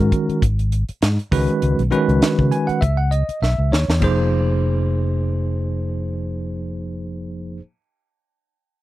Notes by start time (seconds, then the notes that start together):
Already playing: D#3 G#3 C#4 F#4 A#4
0.12 kick, closed hi-hat
0.29 muted fingered electric bass stroke, closed hi-hat
0.42 G#1, kick, closed hi-hat
0.59 closed hi-hat
0.72 closed hi-hat
0.89 muted fingered electric bass stroke, closed hi-hat
1.02 G#2, snare, closed hi-hat
1.19 closed hi-hat
1.32 C#2 D#3 G#3 C#4 F#4 B4, kick, open hi-hat
1.49 closed hi-hat
1.62 C#2, closed hi-hat
1.79 B1, closed hi-hat
1.91 D#3 G#3 C#4 F#4 B4, closed hi-hat
2.08 C#2, closed hi-hat
2.22 snare, closed hi-hat
2.39 C#3, kick
2.52 G#5, closed hi-hat
2.67 F#5, muted fingered electric bass stroke, closed hi-hat
2.81 C#2 E5, kick, closed hi-hat
2.97 F#5
3.11 D#5, closed hi-hat
3.29 muted fingered electric bass stroke, closed hi-hat
3.42 B1 E5, snare
3.58 C#2
3.72 D#2 C#5, snare
3.88 E2, snare
4.00 F1 F3 A#3 D#4 G#4, kick, crash
4.04 C5